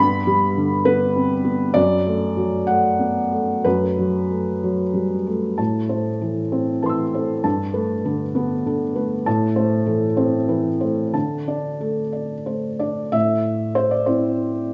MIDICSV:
0, 0, Header, 1, 2, 480
1, 0, Start_track
1, 0, Tempo, 598802
1, 1408, Time_signature, 6, 3, 24, 8
1, 1900, Tempo, 641711
1, 4780, Tempo, 610376
1, 8140, Tempo, 662252
1, 10060, Tempo, 618557
1, 11297, End_track
2, 0, Start_track
2, 0, Title_t, "Felt piano"
2, 0, Program_c, 0, 0
2, 0, Note_on_c, 0, 43, 69
2, 0, Note_on_c, 0, 59, 51
2, 0, Note_on_c, 0, 83, 106
2, 123, Note_off_c, 0, 59, 0
2, 134, Control_c, 0, 64, 127
2, 215, Note_on_c, 0, 55, 59
2, 460, Note_on_c, 0, 50, 47
2, 594, Note_off_c, 0, 55, 0
2, 683, Note_on_c, 0, 71, 89
2, 685, Note_off_c, 0, 83, 0
2, 685, Note_on_c, 0, 59, 47
2, 837, Note_off_c, 0, 50, 0
2, 928, Note_on_c, 0, 60, 43
2, 1069, Note_off_c, 0, 59, 0
2, 1160, Note_on_c, 0, 59, 50
2, 1167, Note_off_c, 0, 60, 0
2, 1372, Note_off_c, 0, 43, 0
2, 1393, Note_on_c, 0, 74, 100
2, 1399, Note_on_c, 0, 42, 59
2, 1404, Note_off_c, 0, 59, 0
2, 1404, Note_off_c, 0, 71, 0
2, 1421, Control_c, 0, 64, 0
2, 1570, Control_c, 0, 64, 127
2, 1651, Note_on_c, 0, 57, 54
2, 1898, Note_on_c, 0, 54, 47
2, 2039, Note_off_c, 0, 57, 0
2, 2123, Note_on_c, 0, 78, 78
2, 2126, Note_off_c, 0, 74, 0
2, 2131, Note_on_c, 0, 57, 45
2, 2272, Note_off_c, 0, 54, 0
2, 2366, Note_on_c, 0, 59, 37
2, 2510, Note_off_c, 0, 57, 0
2, 2607, Note_off_c, 0, 59, 0
2, 2608, Note_on_c, 0, 57, 44
2, 2818, Note_off_c, 0, 42, 0
2, 2846, Note_off_c, 0, 78, 0
2, 2853, Note_on_c, 0, 71, 78
2, 2860, Note_on_c, 0, 42, 55
2, 2867, Control_c, 0, 64, 0
2, 2995, Control_c, 0, 64, 127
2, 2998, Note_off_c, 0, 57, 0
2, 3107, Note_on_c, 0, 54, 47
2, 3348, Note_on_c, 0, 57, 43
2, 3488, Note_off_c, 0, 54, 0
2, 3593, Note_on_c, 0, 54, 45
2, 3726, Note_off_c, 0, 57, 0
2, 3821, Note_on_c, 0, 55, 37
2, 3970, Note_off_c, 0, 54, 0
2, 4062, Note_off_c, 0, 71, 0
2, 4063, Note_off_c, 0, 55, 0
2, 4065, Note_on_c, 0, 57, 41
2, 4280, Note_off_c, 0, 42, 0
2, 4298, Note_on_c, 0, 81, 43
2, 4305, Note_on_c, 0, 45, 48
2, 4308, Note_off_c, 0, 57, 0
2, 4322, Control_c, 0, 64, 0
2, 4445, Control_c, 0, 64, 127
2, 4535, Note_on_c, 0, 72, 40
2, 4537, Note_on_c, 0, 57, 37
2, 4682, Note_off_c, 0, 81, 0
2, 4774, Note_on_c, 0, 69, 38
2, 4776, Note_on_c, 0, 52, 37
2, 4919, Note_off_c, 0, 57, 0
2, 4919, Note_off_c, 0, 72, 0
2, 5016, Note_on_c, 0, 60, 40
2, 5016, Note_on_c, 0, 72, 37
2, 5161, Note_off_c, 0, 52, 0
2, 5161, Note_off_c, 0, 69, 0
2, 5255, Note_on_c, 0, 81, 33
2, 5261, Note_on_c, 0, 52, 35
2, 5263, Note_on_c, 0, 71, 37
2, 5283, Note_on_c, 0, 84, 34
2, 5310, Note_on_c, 0, 88, 31
2, 5400, Note_off_c, 0, 60, 0
2, 5400, Note_off_c, 0, 72, 0
2, 5501, Note_off_c, 0, 71, 0
2, 5507, Note_on_c, 0, 57, 34
2, 5508, Note_on_c, 0, 72, 36
2, 5644, Note_off_c, 0, 52, 0
2, 5706, Note_off_c, 0, 81, 0
2, 5707, Note_off_c, 0, 45, 0
2, 5719, Note_off_c, 0, 84, 0
2, 5733, Note_off_c, 0, 88, 0
2, 5737, Note_on_c, 0, 81, 52
2, 5738, Note_on_c, 0, 43, 55
2, 5743, Note_off_c, 0, 57, 0
2, 5743, Note_off_c, 0, 72, 0
2, 5754, Control_c, 0, 64, 0
2, 5866, Control_c, 0, 64, 127
2, 5973, Note_on_c, 0, 71, 51
2, 5974, Note_on_c, 0, 57, 45
2, 6119, Note_off_c, 0, 81, 0
2, 6219, Note_on_c, 0, 50, 45
2, 6221, Note_on_c, 0, 69, 44
2, 6356, Note_off_c, 0, 57, 0
2, 6356, Note_off_c, 0, 71, 0
2, 6453, Note_on_c, 0, 59, 49
2, 6458, Note_on_c, 0, 71, 46
2, 6597, Note_off_c, 0, 50, 0
2, 6598, Note_off_c, 0, 69, 0
2, 6699, Note_on_c, 0, 50, 43
2, 6704, Note_on_c, 0, 69, 45
2, 6832, Note_off_c, 0, 59, 0
2, 6835, Note_off_c, 0, 71, 0
2, 6931, Note_on_c, 0, 71, 45
2, 6933, Note_on_c, 0, 57, 44
2, 6934, Note_off_c, 0, 69, 0
2, 7075, Note_off_c, 0, 50, 0
2, 7135, Note_off_c, 0, 43, 0
2, 7169, Note_off_c, 0, 71, 0
2, 7170, Note_off_c, 0, 57, 0
2, 7173, Note_on_c, 0, 81, 66
2, 7176, Note_on_c, 0, 45, 66
2, 7182, Control_c, 0, 64, 0
2, 7314, Control_c, 0, 64, 127
2, 7406, Note_on_c, 0, 72, 52
2, 7411, Note_on_c, 0, 57, 50
2, 7553, Note_off_c, 0, 81, 0
2, 7644, Note_on_c, 0, 69, 48
2, 7650, Note_on_c, 0, 52, 39
2, 7791, Note_off_c, 0, 72, 0
2, 7793, Note_off_c, 0, 57, 0
2, 7885, Note_on_c, 0, 72, 48
2, 7886, Note_on_c, 0, 60, 45
2, 8036, Note_off_c, 0, 69, 0
2, 8039, Note_off_c, 0, 52, 0
2, 8136, Note_on_c, 0, 71, 40
2, 8137, Note_on_c, 0, 52, 42
2, 8277, Note_off_c, 0, 72, 0
2, 8278, Note_off_c, 0, 60, 0
2, 8367, Note_on_c, 0, 72, 43
2, 8370, Note_on_c, 0, 57, 34
2, 8372, Note_off_c, 0, 71, 0
2, 8515, Note_off_c, 0, 52, 0
2, 8586, Note_off_c, 0, 45, 0
2, 8605, Note_on_c, 0, 50, 53
2, 8606, Note_on_c, 0, 81, 48
2, 8608, Note_off_c, 0, 72, 0
2, 8609, Note_off_c, 0, 57, 0
2, 8622, Control_c, 0, 64, 0
2, 8768, Control_c, 0, 64, 127
2, 8851, Note_on_c, 0, 62, 37
2, 8854, Note_on_c, 0, 74, 42
2, 8991, Note_off_c, 0, 81, 0
2, 9089, Note_on_c, 0, 57, 35
2, 9091, Note_on_c, 0, 69, 39
2, 9236, Note_off_c, 0, 62, 0
2, 9238, Note_off_c, 0, 74, 0
2, 9323, Note_on_c, 0, 74, 36
2, 9477, Note_off_c, 0, 57, 0
2, 9478, Note_off_c, 0, 69, 0
2, 9567, Note_on_c, 0, 72, 31
2, 9568, Note_on_c, 0, 57, 37
2, 9718, Note_off_c, 0, 74, 0
2, 9808, Note_on_c, 0, 74, 60
2, 9815, Note_on_c, 0, 62, 30
2, 9817, Note_off_c, 0, 72, 0
2, 9962, Note_off_c, 0, 57, 0
2, 10026, Note_off_c, 0, 50, 0
2, 10045, Note_on_c, 0, 76, 82
2, 10047, Note_on_c, 0, 45, 48
2, 10053, Note_off_c, 0, 74, 0
2, 10055, Note_off_c, 0, 62, 0
2, 10072, Control_c, 0, 64, 0
2, 10206, Control_c, 0, 64, 127
2, 10533, Note_off_c, 0, 76, 0
2, 10533, Note_on_c, 0, 72, 75
2, 10656, Note_off_c, 0, 72, 0
2, 10656, Note_on_c, 0, 74, 66
2, 10774, Note_on_c, 0, 72, 58
2, 10777, Note_off_c, 0, 74, 0
2, 10784, Note_on_c, 0, 60, 34
2, 10786, Note_on_c, 0, 64, 33
2, 11297, Note_off_c, 0, 45, 0
2, 11297, Note_off_c, 0, 60, 0
2, 11297, Note_off_c, 0, 64, 0
2, 11297, Note_off_c, 0, 72, 0
2, 11297, End_track
0, 0, End_of_file